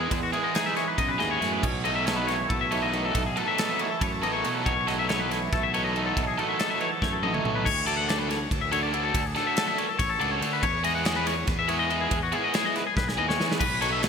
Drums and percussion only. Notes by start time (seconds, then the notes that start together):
0.11 kick, ride
0.33 ride
0.55 snare, ride
0.77 snare, ride
0.98 kick, ride
1.20 snare, ride
1.42 snare, ride
1.63 kick, crash
1.85 ride
2.07 snare, ride
2.28 snare, ride
2.50 kick, ride
2.72 ride
2.93 ride
3.15 kick, ride
3.37 ride
3.58 snare, ride
3.79 ride
4.01 kick, ride
4.23 ride
4.45 ride
4.66 kick, ride
4.88 snare, ride
5.09 snare, ride
5.31 snare, ride
5.53 kick, snare, ride
5.74 ride
5.96 ride
6.17 kick, ride
6.39 ride
6.59 snare, ride
6.80 ride
7.02 kick, snare
7.23 high tom
7.34 mid tom
7.45 mid tom
7.66 kick, crash
7.88 ride
8.09 snare, ride
8.30 snare, ride
8.51 kick, ride
8.72 ride
8.94 ride
9.15 kick, ride
9.36 snare, ride
9.57 snare, ride
9.78 ride
9.99 kick, ride
10.21 ride
10.42 ride
10.63 kick, ride
10.84 ride
11.05 snare, ride
11.27 snare, ride
11.47 kick, snare, ride
11.69 ride
11.90 ride
12.11 kick, ride
12.32 ride
12.54 snare, ride
12.76 snare, ride
12.97 kick, snare
13.09 snare
13.30 snare
13.41 snare
13.52 snare
13.61 kick, crash
13.82 snare, ride
14.03 snare, ride